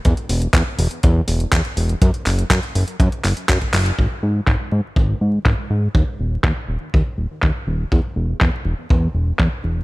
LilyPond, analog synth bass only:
\new Staff \with { instrumentName = "Analog synth bass" } { \clef bass \time 4/4 \key e \lydian \tempo 4 = 122 e,8 e,,8 e,8 e,,8 e,8 e,,8 e,8 e,,8 | fis,8 fis,,8 fis,8 fis,,8 fis,8 fis,,8 fis,8 fis,,8 | gis,,8 gis,8 gis,,8 gis,8 gis,,8 gis,8 gis,,8 gis,8 | dis,8 dis,,8 dis,8 dis,,8 dis,8 dis,,8 dis,8 dis,,8 |
e,8 e,,8 e,8 e,,8 e,8 e,,8 e,8 e,,8 | }